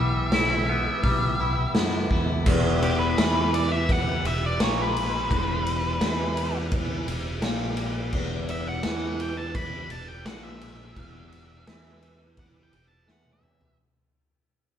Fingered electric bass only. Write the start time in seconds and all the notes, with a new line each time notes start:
Already playing: B1
1.04 B1
1.75 F#2
2.10 E2
2.46 E1
3.18 E2
4.24 E1
4.59 A#1
5.31 E1
6.01 E2
7.07 E1
7.42 A#1
8.13 E1
8.85 E2
9.91 E1
10.25 A#1
10.96 E1
11.68 E2
12.73 E1
13.08 E2